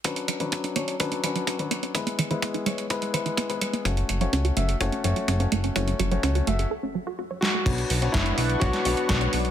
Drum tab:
CC |----------------|----------------|----------------|----------------|
HH |xxxxxxxxxxxxxxxx|xxxxxxxxxxxxxxxx|xxxxxxxxxxxxxxxx|xxxxxxxx--------|
SD |----------------|----------------|----------------|--------------o-|
BD |o---o---o---o---|o---o---o---o---|o---o---o---o---|o---o-----------|

CC |x---------------|
HH |xxoxxxoxxxoxxxox|
SD |----o----o--o---|
BD |o---o---o---o---|